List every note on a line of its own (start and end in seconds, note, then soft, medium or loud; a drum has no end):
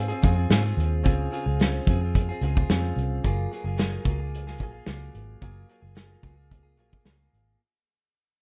0.00 0.12 G#2 medium
0.00 0.10 C4 soft
0.08 0.22 C4 medium
0.08 0.23 F4 medium
0.08 0.23 G#4 medium
0.08 closed hi-hat medium
0.22 0.45 F2 medium
0.22 0.36 C#3 medium
0.22 0.37 C4 medium
0.22 0.36 F4 medium
0.22 0.34 G#4 medium
0.22 kick medium
0.22 closed hi-hat medium
0.36 0.50 C4 soft
0.36 0.51 F4 medium
0.36 0.50 G#4 medium
0.50 0.72 G#2 medium
0.50 0.64 C#3 medium
0.50 0.64 C4 medium
0.50 0.64 F4 medium
0.50 0.62 G#4 medium
0.50 snare medium
0.50 closed hi-hat medium
0.64 1.03 C4 soft
0.64 1.04 F4 soft
0.64 1.05 G#4 medium
0.77 1.05 D#2 medium
0.77 closed hi-hat medium
1.04 1.27 C#2 medium
1.04 1.30 C#3 medium
1.04 1.31 C4 medium
1.04 1.31 F4 loud
1.04 1.32 G#4 loud
1.04 kick medium
1.04 closed hi-hat medium
1.31 1.45 C#3 medium
1.31 1.46 C4 medium
1.31 1.46 F4 medium
1.31 1.44 G#4 medium
1.31 closed hi-hat medium
1.46 1.79 C#2 medium
1.46 1.60 C4 medium
1.46 1.60 F4 medium
1.46 1.59 G#4 medium
1.60 1.86 C#3 medium
1.60 1.87 C4 loud
1.60 1.88 F4 medium
1.60 1.88 G#4 medium
1.60 snare loud
1.60 closed hi-hat medium
1.87 2.30 F2 medium
1.87 2.01 C#3 medium
1.87 2.01 C4 medium
1.87 2.02 F4 medium
1.87 2.00 G#4 medium
1.87 kick medium
1.87 closed hi-hat medium
2.01 2.30 C4 soft
2.01 2.29 F4 soft
2.01 2.28 G#4 medium
2.15 kick medium
2.15 closed hi-hat medium
2.29 2.42 C4 soft
2.29 2.43 F4 medium
2.29 2.42 G#4 medium
2.41 2.63 C#2 medium
2.41 2.55 C#3 medium
2.41 2.56 C4 medium
2.41 2.56 F4 medium
2.41 closed hi-hat medium
2.45 2.54 G#4 medium
2.56 2.69 C4 soft
2.56 2.70 F4 soft
2.56 2.69 G#4 medium
2.56 kick medium
2.70 2.91 F2 medium
2.70 3.24 C#3 medium
2.70 3.24 C4 medium
2.70 3.25 F4 loud
2.70 3.26 G#4 medium
2.70 snare loud
2.70 closed hi-hat medium
2.96 3.18 C2 medium
2.96 closed hi-hat medium
3.24 3.46 F#1 loud
3.24 3.50 F#3 medium
3.24 3.51 A#3 medium
3.24 3.52 F4 loud
3.24 3.52 G#4 loud
3.24 kick medium
3.24 closed hi-hat medium
3.51 3.65 F#3 medium
3.51 3.65 A#3 medium
3.51 3.65 F4 medium
3.51 3.64 G#4 medium
3.51 closed hi-hat medium
3.64 3.97 F#1 medium
3.64 3.77 A#3 soft
3.64 3.78 F4 medium
3.64 3.78 G#4 medium
3.77 4.04 F#3 medium
3.77 4.05 A#3 medium
3.77 4.06 F4 medium
3.77 4.06 G#4 loud
3.77 snare loud
3.77 closed hi-hat medium
4.05 4.59 C#2 medium
4.05 4.19 F#3 medium
4.05 4.20 A#3 medium
4.05 4.20 F4 medium
4.05 kick medium
4.05 closed hi-hat medium
4.09 4.18 G#4 medium
4.20 4.48 A#3 soft
4.20 4.47 F4 soft
4.20 4.46 G#4 soft
4.35 closed hi-hat medium
4.47 4.60 A#3 soft
4.47 4.61 F4 medium
4.47 4.60 G#4 medium
4.47 snare soft
4.58 4.81 A#1 medium
4.58 4.74 F#3 medium
4.58 4.74 A#3 medium
4.58 kick medium
4.58 closed hi-hat medium
4.63 4.73 F4 medium
4.63 4.71 G#4 medium
4.73 4.87 A#3 soft
4.73 4.87 F4 soft
4.73 4.87 G#4 medium
4.86 5.09 C#2 medium
4.86 5.41 F#3 medium
4.86 5.42 A#3 medium
4.86 5.43 F4 medium
4.86 5.43 G#4 medium
4.86 snare loud
4.86 closed hi-hat medium
5.14 5.36 G#1 medium
5.14 closed hi-hat medium
5.41 5.63 F#1 medium
5.41 5.68 F#3 medium
5.41 5.68 A#3 medium
5.41 5.69 F4 loud
5.41 5.70 G#4 medium
5.41 kick medium
5.41 closed hi-hat medium
5.69 5.82 F#3 medium
5.69 5.83 A#3 medium
5.69 5.82 F4 medium
5.69 5.80 G#4 medium
5.69 closed hi-hat medium
5.82 6.15 F#1 medium
5.82 5.95 A#3 soft
5.82 5.96 F4 medium
5.82 5.96 G#4 medium
5.95 6.21 F#3 medium
5.95 6.22 A#3 medium
5.95 6.24 F4 medium
5.95 6.24 G#4 medium
5.95 snare medium
5.95 closed hi-hat medium
6.23 6.78 C#2 medium
6.23 6.37 F#3 medium
6.23 6.37 A#3 medium
6.23 6.36 F4 medium
6.23 6.35 G#4 medium
6.23 kick medium
6.23 closed hi-hat medium
6.36 6.65 A#3 soft
6.36 6.64 F4 soft
6.36 6.62 G#4 soft
6.51 kick medium
6.51 closed hi-hat medium
6.63 6.77 A#3 soft
6.63 6.78 F4 soft
6.63 6.77 G#4 soft
6.77 7.00 A#1 medium
6.77 6.91 F#3 medium
6.77 6.92 A#3 medium
6.77 6.90 F4 medium
6.77 6.89 G#4 medium
6.77 closed hi-hat medium
6.90 7.04 A#3 soft
6.90 7.05 F4 soft
6.90 7.04 G#4 soft
6.90 kick medium
7.05 7.27 C#2 medium
7.05 7.19 F#3 medium
7.05 7.19 A#3 medium
7.05 7.18 F4 medium
7.05 7.16 G#4 medium
7.05 snare medium
7.05 closed hi-hat medium
7.17 7.61 A#3 soft
7.17 7.60 F4 soft
7.17 7.59 G#4 soft
7.33 7.55 G#1 medium
7.33 closed hi-hat medium